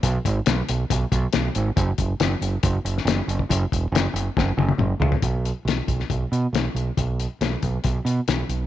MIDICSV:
0, 0, Header, 1, 3, 480
1, 0, Start_track
1, 0, Tempo, 433839
1, 43, Time_signature, 4, 2, 24, 8
1, 9589, End_track
2, 0, Start_track
2, 0, Title_t, "Fingered electric bass"
2, 0, Program_c, 0, 33
2, 34, Note_on_c, 0, 35, 92
2, 189, Note_off_c, 0, 35, 0
2, 275, Note_on_c, 0, 32, 89
2, 430, Note_off_c, 0, 32, 0
2, 518, Note_on_c, 0, 35, 85
2, 672, Note_off_c, 0, 35, 0
2, 765, Note_on_c, 0, 35, 83
2, 916, Note_off_c, 0, 35, 0
2, 1000, Note_on_c, 0, 35, 90
2, 1153, Note_off_c, 0, 35, 0
2, 1236, Note_on_c, 0, 35, 81
2, 1390, Note_off_c, 0, 35, 0
2, 1489, Note_on_c, 0, 35, 89
2, 1639, Note_off_c, 0, 35, 0
2, 1722, Note_on_c, 0, 32, 89
2, 1874, Note_off_c, 0, 32, 0
2, 1953, Note_on_c, 0, 30, 97
2, 2108, Note_off_c, 0, 30, 0
2, 2194, Note_on_c, 0, 30, 82
2, 2348, Note_off_c, 0, 30, 0
2, 2434, Note_on_c, 0, 30, 83
2, 2588, Note_off_c, 0, 30, 0
2, 2669, Note_on_c, 0, 30, 81
2, 2824, Note_off_c, 0, 30, 0
2, 2912, Note_on_c, 0, 30, 94
2, 3066, Note_off_c, 0, 30, 0
2, 3149, Note_on_c, 0, 30, 78
2, 3305, Note_off_c, 0, 30, 0
2, 3374, Note_on_c, 0, 30, 92
2, 3534, Note_off_c, 0, 30, 0
2, 3627, Note_on_c, 0, 30, 84
2, 3783, Note_off_c, 0, 30, 0
2, 3869, Note_on_c, 0, 30, 94
2, 4024, Note_off_c, 0, 30, 0
2, 4117, Note_on_c, 0, 28, 80
2, 4269, Note_off_c, 0, 28, 0
2, 4336, Note_on_c, 0, 30, 81
2, 4495, Note_off_c, 0, 30, 0
2, 4572, Note_on_c, 0, 30, 80
2, 4732, Note_off_c, 0, 30, 0
2, 4832, Note_on_c, 0, 30, 84
2, 4986, Note_off_c, 0, 30, 0
2, 5058, Note_on_c, 0, 30, 79
2, 5216, Note_off_c, 0, 30, 0
2, 5288, Note_on_c, 0, 30, 83
2, 5449, Note_off_c, 0, 30, 0
2, 5528, Note_on_c, 0, 37, 80
2, 5689, Note_off_c, 0, 37, 0
2, 5779, Note_on_c, 0, 35, 84
2, 6092, Note_off_c, 0, 35, 0
2, 6250, Note_on_c, 0, 35, 70
2, 6412, Note_off_c, 0, 35, 0
2, 6497, Note_on_c, 0, 35, 73
2, 6657, Note_off_c, 0, 35, 0
2, 6747, Note_on_c, 0, 35, 76
2, 6904, Note_off_c, 0, 35, 0
2, 6990, Note_on_c, 0, 47, 72
2, 7146, Note_off_c, 0, 47, 0
2, 7222, Note_on_c, 0, 35, 71
2, 7381, Note_off_c, 0, 35, 0
2, 7464, Note_on_c, 0, 35, 72
2, 7623, Note_off_c, 0, 35, 0
2, 7721, Note_on_c, 0, 35, 84
2, 8028, Note_off_c, 0, 35, 0
2, 8197, Note_on_c, 0, 35, 73
2, 8352, Note_off_c, 0, 35, 0
2, 8443, Note_on_c, 0, 35, 74
2, 8596, Note_off_c, 0, 35, 0
2, 8678, Note_on_c, 0, 35, 86
2, 8833, Note_off_c, 0, 35, 0
2, 8906, Note_on_c, 0, 47, 83
2, 9066, Note_off_c, 0, 47, 0
2, 9160, Note_on_c, 0, 35, 79
2, 9316, Note_off_c, 0, 35, 0
2, 9393, Note_on_c, 0, 35, 78
2, 9589, Note_off_c, 0, 35, 0
2, 9589, End_track
3, 0, Start_track
3, 0, Title_t, "Drums"
3, 35, Note_on_c, 9, 42, 100
3, 37, Note_on_c, 9, 36, 94
3, 145, Note_off_c, 9, 42, 0
3, 147, Note_off_c, 9, 36, 0
3, 277, Note_on_c, 9, 36, 72
3, 284, Note_on_c, 9, 42, 66
3, 388, Note_off_c, 9, 36, 0
3, 394, Note_off_c, 9, 42, 0
3, 509, Note_on_c, 9, 42, 86
3, 519, Note_on_c, 9, 38, 99
3, 619, Note_off_c, 9, 42, 0
3, 629, Note_off_c, 9, 38, 0
3, 759, Note_on_c, 9, 42, 73
3, 869, Note_off_c, 9, 42, 0
3, 999, Note_on_c, 9, 36, 102
3, 1002, Note_on_c, 9, 42, 98
3, 1110, Note_off_c, 9, 36, 0
3, 1113, Note_off_c, 9, 42, 0
3, 1238, Note_on_c, 9, 36, 77
3, 1241, Note_on_c, 9, 42, 72
3, 1348, Note_off_c, 9, 36, 0
3, 1351, Note_off_c, 9, 42, 0
3, 1467, Note_on_c, 9, 42, 88
3, 1477, Note_on_c, 9, 38, 111
3, 1578, Note_off_c, 9, 42, 0
3, 1587, Note_off_c, 9, 38, 0
3, 1714, Note_on_c, 9, 42, 67
3, 1824, Note_off_c, 9, 42, 0
3, 1957, Note_on_c, 9, 36, 105
3, 1958, Note_on_c, 9, 42, 86
3, 2067, Note_off_c, 9, 36, 0
3, 2069, Note_off_c, 9, 42, 0
3, 2191, Note_on_c, 9, 42, 65
3, 2195, Note_on_c, 9, 36, 75
3, 2301, Note_off_c, 9, 42, 0
3, 2306, Note_off_c, 9, 36, 0
3, 2433, Note_on_c, 9, 42, 81
3, 2443, Note_on_c, 9, 38, 96
3, 2544, Note_off_c, 9, 42, 0
3, 2554, Note_off_c, 9, 38, 0
3, 2680, Note_on_c, 9, 42, 69
3, 2790, Note_off_c, 9, 42, 0
3, 2910, Note_on_c, 9, 42, 82
3, 2916, Note_on_c, 9, 36, 112
3, 3020, Note_off_c, 9, 42, 0
3, 3026, Note_off_c, 9, 36, 0
3, 3162, Note_on_c, 9, 42, 67
3, 3273, Note_off_c, 9, 42, 0
3, 3294, Note_on_c, 9, 38, 31
3, 3398, Note_on_c, 9, 42, 93
3, 3405, Note_off_c, 9, 38, 0
3, 3408, Note_on_c, 9, 38, 107
3, 3509, Note_off_c, 9, 42, 0
3, 3519, Note_off_c, 9, 38, 0
3, 3641, Note_on_c, 9, 42, 61
3, 3752, Note_off_c, 9, 42, 0
3, 3755, Note_on_c, 9, 36, 66
3, 3866, Note_off_c, 9, 36, 0
3, 3878, Note_on_c, 9, 36, 92
3, 3883, Note_on_c, 9, 42, 100
3, 3989, Note_off_c, 9, 36, 0
3, 3993, Note_off_c, 9, 42, 0
3, 4118, Note_on_c, 9, 36, 70
3, 4129, Note_on_c, 9, 42, 64
3, 4229, Note_off_c, 9, 36, 0
3, 4240, Note_off_c, 9, 42, 0
3, 4372, Note_on_c, 9, 42, 84
3, 4382, Note_on_c, 9, 38, 88
3, 4483, Note_off_c, 9, 42, 0
3, 4493, Note_off_c, 9, 38, 0
3, 4603, Note_on_c, 9, 42, 77
3, 4713, Note_off_c, 9, 42, 0
3, 4833, Note_on_c, 9, 36, 106
3, 4849, Note_on_c, 9, 38, 60
3, 4943, Note_off_c, 9, 36, 0
3, 4960, Note_off_c, 9, 38, 0
3, 5073, Note_on_c, 9, 48, 68
3, 5183, Note_off_c, 9, 48, 0
3, 5183, Note_on_c, 9, 48, 61
3, 5294, Note_off_c, 9, 48, 0
3, 5302, Note_on_c, 9, 47, 84
3, 5413, Note_off_c, 9, 47, 0
3, 5552, Note_on_c, 9, 43, 93
3, 5663, Note_off_c, 9, 43, 0
3, 5664, Note_on_c, 9, 43, 87
3, 5774, Note_off_c, 9, 43, 0
3, 5779, Note_on_c, 9, 42, 72
3, 5780, Note_on_c, 9, 36, 94
3, 5890, Note_off_c, 9, 42, 0
3, 5891, Note_off_c, 9, 36, 0
3, 6034, Note_on_c, 9, 42, 51
3, 6144, Note_off_c, 9, 42, 0
3, 6280, Note_on_c, 9, 42, 63
3, 6290, Note_on_c, 9, 38, 90
3, 6390, Note_off_c, 9, 42, 0
3, 6400, Note_off_c, 9, 38, 0
3, 6506, Note_on_c, 9, 36, 77
3, 6509, Note_on_c, 9, 42, 56
3, 6617, Note_off_c, 9, 36, 0
3, 6620, Note_off_c, 9, 42, 0
3, 6635, Note_on_c, 9, 38, 26
3, 6746, Note_off_c, 9, 38, 0
3, 6747, Note_on_c, 9, 36, 91
3, 6749, Note_on_c, 9, 42, 68
3, 6858, Note_off_c, 9, 36, 0
3, 6860, Note_off_c, 9, 42, 0
3, 7002, Note_on_c, 9, 42, 51
3, 7113, Note_off_c, 9, 42, 0
3, 7242, Note_on_c, 9, 42, 74
3, 7252, Note_on_c, 9, 38, 96
3, 7353, Note_off_c, 9, 42, 0
3, 7363, Note_off_c, 9, 38, 0
3, 7484, Note_on_c, 9, 42, 54
3, 7595, Note_off_c, 9, 42, 0
3, 7716, Note_on_c, 9, 36, 91
3, 7718, Note_on_c, 9, 42, 76
3, 7827, Note_off_c, 9, 36, 0
3, 7829, Note_off_c, 9, 42, 0
3, 7962, Note_on_c, 9, 42, 56
3, 8072, Note_off_c, 9, 42, 0
3, 8200, Note_on_c, 9, 42, 67
3, 8210, Note_on_c, 9, 38, 95
3, 8311, Note_off_c, 9, 42, 0
3, 8321, Note_off_c, 9, 38, 0
3, 8437, Note_on_c, 9, 42, 56
3, 8440, Note_on_c, 9, 36, 76
3, 8548, Note_off_c, 9, 42, 0
3, 8551, Note_off_c, 9, 36, 0
3, 8671, Note_on_c, 9, 42, 79
3, 8681, Note_on_c, 9, 36, 100
3, 8782, Note_off_c, 9, 42, 0
3, 8792, Note_off_c, 9, 36, 0
3, 8923, Note_on_c, 9, 42, 58
3, 9033, Note_off_c, 9, 42, 0
3, 9158, Note_on_c, 9, 42, 75
3, 9168, Note_on_c, 9, 38, 99
3, 9269, Note_off_c, 9, 42, 0
3, 9279, Note_off_c, 9, 38, 0
3, 9400, Note_on_c, 9, 42, 52
3, 9511, Note_off_c, 9, 42, 0
3, 9589, End_track
0, 0, End_of_file